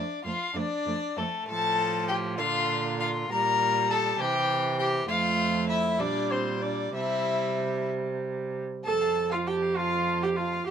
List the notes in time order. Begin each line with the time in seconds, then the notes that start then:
Already playing: D4 D5
0.25 F2 A3 F4 F5
0.55 F2 A3 D4 D5
0.86 F2 A3
1.17 F2 A3 A4
1.48 A2 F3 A4 A5
2.08 G4 G5
2.38 A#2 D3 F4 F5
3.00 F4 F5
3.30 A#2 G3 A#4 A#5
3.90 A4 A5
4.19 C3 E3 G4 G5
4.79 G4 G5
5.08 F2 A3 F4 F5
5.69 E4 E5
5.99 A#2 G3 D4 D5
6.31 C4 C5
6.62 D4 D5
6.94 C3 G3 E4 E5
8.84 F2 A4 A5
9.01 F5
9.16 A5
9.31 F4 F5
9.47 G4 G5 A5
9.62 F5
9.76 F4 F5 A5
9.91 F5
10.06 A5
10.22 G4 F5 G5
10.37 F4 F5 A5
10.53 F5
10.67 G4 C6